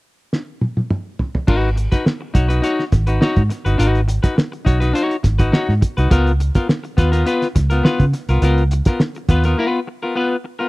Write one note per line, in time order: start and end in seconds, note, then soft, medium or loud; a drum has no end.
0.33 snare soft
0.61 high tom medium
0.77 high tom medium
0.90 mid tom medium
1.19 floor tom medium
1.35 floor tom medium
1.47 1.86 G#1 loud
1.47 1.68 D#4 medium
1.47 1.69 F#4 loud
1.47 1.69 B4 medium
1.47 kick loud
1.47 crash medium
1.76 muted clean electric guitar stroke soft
1.76 closed hi-hat medium
1.92 2.04 D#4 soft
1.92 2.05 F#4 soft
1.92 2.06 B4 medium
1.92 kick medium
1.92 snare soft
1.92 closed hi-hat soft
2.06 snare loud
2.21 muted clean electric guitar stroke soft
2.34 2.60 B1 medium
2.34 2.49 D#4 medium
2.34 2.49 F#4 medium
2.34 2.48 C#5 medium
2.34 kick medium
2.34 snare soft
2.34 closed hi-hat medium
2.49 2.61 D#4 soft
2.49 2.62 F#4 medium
2.49 2.64 B4 medium
2.49 closed hi-hat medium
2.62 2.83 D#4 medium
2.62 2.83 F#4 medium
2.62 2.84 C#5 medium
2.62 closed hi-hat medium
2.79 snare soft
2.92 3.18 G#1 medium
2.92 muted clean electric guitar stroke soft
2.92 kick medium
2.92 snare soft
2.92 closed hi-hat medium
3.07 3.20 D#4 soft
3.07 3.21 F#4 medium
3.07 3.22 B4 medium
3.07 closed hi-hat soft
3.21 3.41 D#4 medium
3.21 3.42 F#4 medium
3.21 3.42 C#5 medium
3.21 snare medium
3.36 3.49 G#2 medium
3.36 kick medium
3.36 closed hi-hat soft
3.50 muted clean electric guitar stroke soft
3.50 snare soft
3.50 closed hi-hat medium
3.65 3.78 G1 medium
3.65 3.77 D#4 soft
3.65 3.78 F#4 soft
3.65 3.79 B4 medium
3.65 closed hi-hat medium
3.78 4.18 G#1 loud
3.78 4.00 D#4 medium
3.78 4.00 F#4 medium
3.78 4.00 B4 medium
3.78 closed hi-hat medium
3.95 closed hi-hat soft
4.08 muted clean electric guitar stroke soft
4.08 closed hi-hat medium
4.23 4.35 D#4 soft
4.23 4.36 F#4 medium
4.23 4.37 B4 soft
4.23 kick medium
4.23 snare soft
4.23 closed hi-hat medium
4.36 muted clean electric guitar stroke soft
4.36 snare loud
4.52 muted clean electric guitar stroke soft
4.52 closed hi-hat soft
4.65 4.91 B1 medium
4.65 4.81 D#4 medium
4.65 4.80 F#4 medium
4.65 4.80 C#5 medium
4.65 kick medium
4.65 closed hi-hat medium
4.80 4.92 D#4 soft
4.80 4.93 F#4 soft
4.80 4.95 B4 medium
4.80 snare soft
4.80 closed hi-hat medium
4.93 5.15 D#4 medium
4.93 5.16 F#4 medium
4.93 5.16 C#5 medium
4.93 closed hi-hat medium
5.11 closed hi-hat soft
5.23 5.49 G#1 medium
5.23 muted clean electric guitar stroke soft
5.23 kick medium
5.23 snare soft
5.23 closed hi-hat medium
5.39 5.51 D#4 medium
5.39 5.52 F#4 medium
5.39 5.53 B4 medium
5.39 kick medium
5.39 closed hi-hat soft
5.52 5.73 D#4 medium
5.52 5.73 F#4 medium
5.52 5.73 C#5 medium
5.52 snare loud
5.69 5.80 G#2 medium
5.69 snare soft
5.81 muted clean electric guitar stroke soft
5.81 kick medium
5.81 closed hi-hat medium
5.97 6.09 C2 medium
5.97 6.10 D#4 soft
5.97 6.11 F#4 medium
5.97 6.12 B4 medium
5.97 closed hi-hat medium
6.11 6.49 C#2 loud
6.11 6.31 B3 medium
6.11 6.31 F4 medium
6.11 6.31 A#4 medium
6.11 kick loud
6.11 closed hi-hat medium
6.27 closed hi-hat soft
6.40 muted clean electric guitar stroke soft
6.40 closed hi-hat medium
6.55 6.67 B3 soft
6.55 6.68 F4 medium
6.55 6.68 A#4 medium
6.55 kick medium
6.55 snare soft
6.55 closed hi-hat medium
6.69 snare loud
6.84 muted clean electric guitar stroke soft
6.84 closed hi-hat soft
6.97 7.23 D#2 medium
6.97 7.12 B3 medium
6.97 7.12 F4 medium
6.97 7.11 B4 medium
6.97 kick medium
6.97 snare soft
6.97 closed hi-hat medium
7.12 7.24 B3 soft
7.12 7.25 F4 medium
7.12 7.27 A#4 medium
7.12 closed hi-hat medium
7.26 7.46 B3 medium
7.26 7.46 F4 medium
7.26 7.47 B4 medium
7.26 closed hi-hat medium
7.42 snare soft
7.42 closed hi-hat soft
7.55 7.80 C#2 medium
7.55 muted clean electric guitar stroke soft
7.55 kick medium
7.55 snare soft
7.55 closed hi-hat medium
7.70 7.82 B3 medium
7.70 7.83 F4 medium
7.70 7.85 A#4 medium
7.70 closed hi-hat medium
7.83 8.04 B3 medium
7.83 8.04 F4 medium
7.83 8.05 B4 medium
7.83 snare loud
8.00 8.12 C#3 loud
8.00 kick medium
8.00 closed hi-hat soft
8.13 muted clean electric guitar stroke soft
8.13 snare soft
8.13 closed hi-hat medium
8.29 8.40 C2 medium
8.29 8.41 B3 soft
8.29 8.42 F4 medium
8.29 8.43 A#4 medium
8.29 closed hi-hat medium
8.42 8.80 C#2 loud
8.42 8.62 B3 medium
8.42 8.63 F4 medium
8.42 8.63 A#4 medium
8.42 closed hi-hat medium
8.58 closed hi-hat soft
8.71 muted clean electric guitar stroke soft
8.71 closed hi-hat medium
8.85 9.00 B3 soft
8.85 9.01 F4 soft
8.85 9.01 A#4 medium
8.85 kick loud
8.85 snare soft
8.85 closed hi-hat medium
9.00 muted clean electric guitar stroke soft
9.00 snare loud
9.15 muted clean electric guitar stroke soft
9.15 closed hi-hat soft
9.29 9.54 D#2 medium
9.29 9.45 B3 medium
9.29 9.45 F4 medium
9.29 9.45 B4 medium
9.29 kick medium
9.29 closed hi-hat medium
9.44 9.57 B3 medium
9.44 9.58 F4 medium
9.44 9.59 A#4 medium
9.44 snare soft
9.44 closed hi-hat medium
9.58 9.78 B3 medium
9.58 9.79 F4 medium
9.58 9.79 B4 medium
9.87 muted clean electric guitar stroke soft
10.03 10.14 B3 soft
10.03 10.15 F4 soft
10.03 10.16 A#4 medium
10.15 10.35 B3 medium
10.15 10.35 F4 medium
10.15 10.36 B4 medium
10.44 muted clean electric guitar stroke soft
10.59 10.69 B3 soft
10.59 10.69 F4 medium
10.59 10.69 A#4 medium